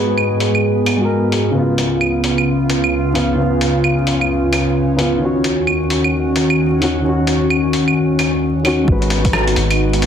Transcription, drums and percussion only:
0.17 claves soft
0.40 open hi-hat medium
0.55 claves soft
0.86 open hi-hat medium
0.86 claves medium
1.32 open hi-hat medium
1.78 open hi-hat medium
2.01 claves medium
2.24 open hi-hat medium
2.38 claves soft
2.70 open hi-hat medium
2.84 claves medium
3.15 open hi-hat medium
3.61 open hi-hat medium
3.84 claves medium
4.07 open hi-hat medium
4.21 claves soft
4.53 open hi-hat medium
4.53 claves medium
4.99 open hi-hat medium
5.44 open hi-hat medium
5.67 claves medium
5.90 open hi-hat medium
6.04 claves soft
6.36 open hi-hat medium
6.50 claves medium
6.82 open hi-hat medium
7.27 open hi-hat medium
7.50 claves medium
7.73 open hi-hat medium
7.88 claves soft
8.19 open hi-hat medium
8.19 claves medium
8.65 open hi-hat medium
8.65 claves medium
8.88 kick loud
9.02 closed hi-hat soft
9.10 open hi-hat medium
9.25 kick loud
9.25 closed hi-hat medium
9.33 cross-stick loud
9.33 claves medium
9.48 closed hi-hat soft
9.56 open hi-hat medium
9.71 closed hi-hat medium
9.71 claves medium
9.93 closed hi-hat soft
10.02 open hi-hat medium

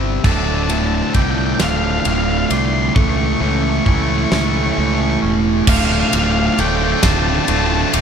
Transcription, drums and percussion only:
0.24 kick loud
0.24 crash medium
0.69 ride medium
1.14 kick medium
1.14 ride medium
1.60 snare loud
1.60 ride medium
2.05 ride medium
2.50 ride medium
2.96 kick loud
3.86 kick medium
4.32 snare loud
5.67 kick loud
5.67 crash loud
6.13 ride medium
6.58 ride medium
7.03 kick medium
7.03 snare loud
7.03 ride loud
7.48 ride medium
7.93 ride medium

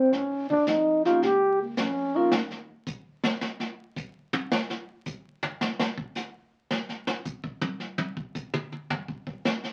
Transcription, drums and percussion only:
0.13 brush sweep medium
0.13 kick soft
0.13 snare soft
0.50 kick medium
0.67 kick soft
0.67 snare medium
0.67 hi-hat pedal medium
1.05 snare soft
1.22 brush sweep soft
1.22 kick soft
1.22 snare soft
1.77 kick soft
1.77 snare medium
1.77 hi-hat pedal medium
2.32 snare medium
2.51 snare soft
2.87 kick medium
2.87 hi-hat pedal medium
3.23 snare medium
3.41 snare medium
3.60 snare soft
3.96 kick medium
3.96 hi-hat pedal soft
4.33 high tom medium
4.52 snare medium
4.70 snare medium
5.06 kick medium
5.06 hi-hat pedal medium
5.43 floor tom medium
5.61 snare medium
5.79 snare loud
5.98 kick medium
6.15 snare soft
6.15 hi-hat pedal medium
6.71 snare medium
6.89 snare soft
7.07 snare medium
7.25 kick medium
7.25 hi-hat pedal soft
7.44 kick medium
7.61 high tom loud
7.80 snare soft
7.98 high tom medium
8.17 kick medium
8.35 kick medium
8.35 hi-hat pedal medium
8.54 mid tom medium
8.72 mid tom soft
8.90 floor tom medium
9.08 kick medium
9.27 kick medium
9.45 snare medium
9.45 hi-hat pedal medium
9.64 snare soft

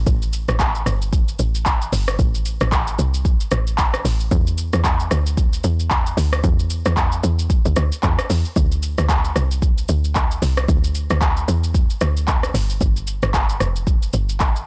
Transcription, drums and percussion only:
0.07 kick loud
0.07 shaker medium
0.22 shaker medium
0.33 shaker loud
0.48 cross-stick loud
0.48 shaker medium
0.59 kick medium
0.59 clap loud
0.59 shaker medium
0.75 shaker medium
0.86 cross-stick medium
0.86 shaker loud
1.02 shaker medium
1.13 kick loud
1.13 shaker medium
1.28 shaker medium
1.39 shaker loud
1.55 shaker medium
1.66 kick medium
1.66 clap medium
1.66 shaker medium
1.82 shaker medium
1.93 open hi-hat medium
1.93 shaker medium
2.08 cross-stick loud
2.08 shaker medium
2.19 kick loud
2.19 shaker medium
2.35 shaker medium
2.45 shaker loud
2.61 cross-stick loud
2.61 shaker medium
2.72 kick medium
2.72 clap loud
2.72 shaker medium
2.87 shaker medium
2.99 shaker loud
3.14 shaker medium
3.25 kick loud
3.25 shaker medium
3.40 shaker medium
3.51 cross-stick loud
3.51 shaker loud
3.67 shaker medium
3.78 kick loud
3.78 clap medium
3.78 shaker medium
3.94 cross-stick loud
3.94 shaker medium
4.05 open hi-hat medium
4.05 shaker medium
4.20 shaker medium
4.31 kick loud
4.31 shaker medium
4.47 shaker medium
4.58 shaker loud
4.73 cross-stick medium
4.73 shaker medium
4.84 kick medium
4.84 clap loud
4.84 shaker medium
5.00 shaker medium
5.11 cross-stick loud
5.11 shaker loud
5.26 shaker medium
5.37 kick loud
5.37 shaker medium
5.53 shaker medium
5.64 shaker loud
5.80 shaker medium
5.91 kick medium
5.91 clap medium
5.91 shaker medium
6.06 shaker medium
6.18 open hi-hat medium
6.18 shaker medium
6.33 cross-stick loud
6.33 shaker medium
6.44 kick loud
6.44 shaker medium
6.59 shaker medium
6.70 shaker loud
6.85 cross-stick loud
6.85 shaker medium
6.97 kick medium
6.97 clap loud
6.97 shaker medium
7.12 shaker medium
7.24 shaker loud
7.39 shaker medium
7.50 kick loud
7.50 shaker medium
7.65 shaker medium
7.76 cross-stick loud
7.76 shaker loud
7.92 shaker medium
8.03 kick medium
8.03 clap medium
8.03 shaker medium
8.19 cross-stick loud
8.19 shaker medium
8.30 open hi-hat medium
8.30 shaker medium
8.45 shaker medium
8.56 kick loud
8.56 shaker medium
8.72 shaker medium
8.83 shaker loud
8.98 cross-stick medium
8.98 shaker medium
9.09 kick medium
9.09 clap loud
9.09 shaker medium
9.25 shaker medium
9.36 cross-stick medium
9.36 shaker loud
9.51 shaker medium
9.62 kick loud
9.62 shaker medium
9.78 shaker medium
9.89 shaker loud
10.04 shaker medium
10.15 kick medium
10.15 clap medium
10.15 shaker medium
10.31 shaker medium
10.42 open hi-hat medium
10.42 shaker medium
10.57 cross-stick loud
10.57 shaker medium
10.69 kick loud
10.69 shaker medium
10.84 shaker medium
10.95 shaker loud
11.10 cross-stick loud
11.10 shaker medium
11.21 kick medium
11.21 clap loud
11.21 shaker medium
11.37 shaker medium
11.48 shaker loud
11.64 shaker medium
11.75 kick loud
11.75 shaker medium
11.90 shaker medium
12.01 cross-stick loud
12.01 shaker loud
12.17 shaker medium
12.28 kick loud
12.28 clap medium
12.28 shaker medium
12.43 cross-stick medium
12.43 shaker medium
12.55 open hi-hat medium
12.55 shaker medium
12.70 shaker medium
12.81 kick loud
12.81 shaker medium
12.96 shaker medium
13.07 shaker loud
13.23 cross-stick loud
13.23 shaker medium
13.34 kick medium
13.34 clap loud
13.34 shaker medium
13.49 shaker medium
13.60 cross-stick medium
13.60 shaker loud
13.76 shaker medium
13.87 kick loud
13.87 shaker medium
14.02 shaker medium
14.13 shaker loud
14.29 shaker medium
14.40 kick medium
14.40 clap medium
14.40 shaker medium
14.56 shaker medium

